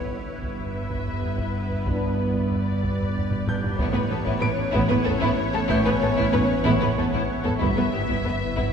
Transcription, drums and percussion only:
0.42 taiko medium
0.58 taiko low medium
0.90 taiko medium
1.07 taiko low medium
1.22 taiko low medium
1.38 taiko medium
1.70 taiko low soft
1.86 taiko loud
2.34 taiko medium
2.51 taiko low medium
2.83 taiko medium
2.99 taiko low medium
3.16 taiko low medium
3.31 taiko low-mid medium
3.47 taiko low-mid loud
3.63 taiko low loud
3.79 taiko loud
4.26 taiko medium
4.43 taiko low medium
4.74 taiko medium
4.90 taiko low medium
5.07 taiko low medium
5.22 taiko medium
5.54 taiko low medium
5.70 taiko loud
6.18 taiko medium
6.34 taiko low medium
6.65 taiko loud
6.82 taiko low medium
6.97 taiko low medium
7.13 taiko medium
7.46 taiko low medium
7.62 taiko loud
8.09 taiko medium
8.26 taiko low medium
8.58 taiko medium

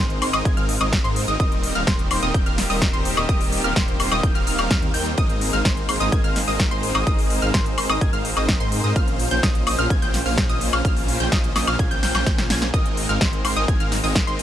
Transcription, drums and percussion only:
0.10 closed hi-hat soft
0.22 open hi-hat loud
0.22 high woodblock medium
0.34 closed hi-hat soft
0.34 high woodblock medium
0.45 kick loud
0.45 closed hi-hat medium
0.57 closed hi-hat soft
0.69 open hi-hat loud
0.81 closed hi-hat soft
0.81 high woodblock medium
0.93 kick loud
0.93 snare loud
0.93 closed hi-hat medium
1.05 closed hi-hat soft
1.16 open hi-hat loud
1.28 closed hi-hat soft
1.40 kick loud
1.40 closed hi-hat medium
1.52 closed hi-hat soft
1.64 open hi-hat loud
1.75 closed hi-hat soft
1.87 kick loud
1.87 snare loud
1.87 closed hi-hat medium
1.99 closed hi-hat soft
2.11 open hi-hat loud
2.11 high woodblock medium
2.34 kick loud
2.34 closed hi-hat medium
2.46 closed hi-hat soft
2.58 snare medium
2.58 open hi-hat loud
2.70 open hi-hat medium
2.82 kick loud
2.82 snare loud
2.82 closed hi-hat medium
2.94 closed hi-hat soft
3.05 open hi-hat loud
3.17 closed hi-hat soft
3.17 high woodblock medium
3.29 kick loud
3.29 closed hi-hat medium
3.41 open hi-hat medium
3.52 open hi-hat loud
3.76 kick loud
3.76 snare loud
3.76 closed hi-hat medium
3.88 closed hi-hat soft
4.00 open hi-hat loud
4.00 high woodblock medium
4.12 high woodblock medium
4.23 kick loud
4.23 closed hi-hat medium
4.35 closed hi-hat soft
4.47 open hi-hat loud
4.59 high woodblock medium
4.71 kick loud
4.71 snare loud
4.71 closed hi-hat medium
4.82 closed hi-hat soft
4.94 open hi-hat loud
5.06 closed hi-hat soft
5.18 kick loud
5.18 closed hi-hat medium
5.30 closed hi-hat soft
5.41 open hi-hat loud
5.53 closed hi-hat soft
5.65 kick loud
5.65 snare loud
5.65 closed hi-hat medium
5.77 closed hi-hat soft
5.89 open hi-hat loud
5.89 high woodblock medium
6.01 closed hi-hat soft
6.12 kick loud
6.12 closed hi-hat medium
6.24 closed hi-hat soft
6.36 snare medium
6.36 open hi-hat loud
6.48 open hi-hat medium
6.60 kick loud
6.60 snare loud
6.60 closed hi-hat medium
6.71 closed hi-hat soft
6.83 open hi-hat loud
6.95 high woodblock medium
7.07 kick loud
7.07 closed hi-hat medium
7.19 open hi-hat medium
7.30 open hi-hat loud
7.42 closed hi-hat soft
7.54 kick loud
7.54 snare loud
7.54 closed hi-hat medium
7.66 closed hi-hat soft
7.78 open hi-hat loud
7.78 high woodblock medium
7.90 high woodblock medium
8.01 kick loud
8.01 closed hi-hat medium
8.13 closed hi-hat soft
8.25 open hi-hat loud
8.37 high woodblock medium
8.48 kick loud
8.48 snare loud
8.48 closed hi-hat medium
8.60 closed hi-hat soft
8.72 open hi-hat loud
8.84 closed hi-hat soft
8.96 kick loud
8.96 closed hi-hat medium
9.08 closed hi-hat soft
9.20 open hi-hat loud
9.31 closed hi-hat soft
9.43 kick loud
9.43 snare loud
9.43 closed hi-hat medium
9.55 closed hi-hat soft
9.67 open hi-hat loud
9.67 high woodblock medium
9.79 closed hi-hat soft
9.90 kick loud
9.90 closed hi-hat medium
10.02 closed hi-hat soft
10.14 snare medium
10.14 open hi-hat loud
10.26 open hi-hat medium
10.38 kick loud
10.38 snare loud
10.38 closed hi-hat medium
10.49 closed hi-hat soft
10.61 open hi-hat loud
10.73 high woodblock medium
10.85 kick loud
10.85 closed hi-hat medium
10.97 open hi-hat medium
11.08 open hi-hat loud
11.20 closed hi-hat soft
11.32 kick loud
11.32 snare loud
11.32 closed hi-hat medium
11.44 closed hi-hat soft
11.56 snare medium
11.56 open hi-hat loud
11.56 high woodblock medium
11.67 closed hi-hat soft
11.67 high woodblock medium
11.79 kick loud
11.79 closed hi-hat medium
11.91 closed hi-hat soft
12.03 snare medium
12.03 open hi-hat loud
12.15 snare medium
12.15 high woodblock medium
12.27 kick loud
12.27 snare medium
12.27 closed hi-hat medium
12.38 snare medium
12.38 closed hi-hat soft
12.50 snare medium
12.50 open hi-hat loud
12.62 snare medium
12.62 closed hi-hat soft
12.74 kick loud
12.74 closed hi-hat medium
12.86 closed hi-hat soft
12.97 open hi-hat loud
13.09 closed hi-hat soft
13.21 kick loud
13.21 snare loud
13.21 closed hi-hat medium
13.33 closed hi-hat soft
13.45 open hi-hat loud
13.45 high woodblock medium
13.56 closed hi-hat soft
13.68 kick loud
13.68 closed hi-hat medium
13.80 closed hi-hat soft
13.92 snare medium
13.92 open hi-hat loud
14.04 open hi-hat medium
14.15 kick loud
14.15 snare loud
14.15 closed hi-hat medium
14.28 closed hi-hat soft
14.39 open hi-hat loud

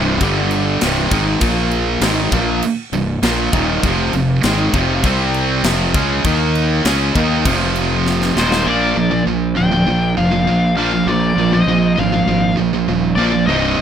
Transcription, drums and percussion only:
0.21 kick loud
0.21 crash medium
0.51 crash medium
0.81 snare loud
0.81 crash medium
1.11 kick loud
1.11 crash medium
1.41 kick loud
1.41 crash medium
1.71 crash medium
2.01 snare loud
2.01 crash medium
2.32 kick medium
2.32 crash medium
2.62 crash medium
2.93 crash medium
3.23 snare loud
3.23 crash medium
3.53 kick loud
3.53 crash medium
3.83 kick loud
3.83 crash medium
4.13 crash medium
4.43 snare loud
4.43 crash medium
4.74 kick medium
4.74 crash medium
5.04 kick loud
5.04 crash medium
5.34 crash medium
5.64 snare loud
5.64 crash medium
5.94 kick loud
5.94 crash medium
6.25 kick loud
6.25 crash medium
6.55 crash medium
6.85 snare loud
6.85 crash medium
7.15 kick medium
7.15 crash medium
7.45 kick loud
7.45 crash medium
7.76 crash medium
8.06 snare medium
8.22 snare medium
8.37 snare loud
8.52 snare medium

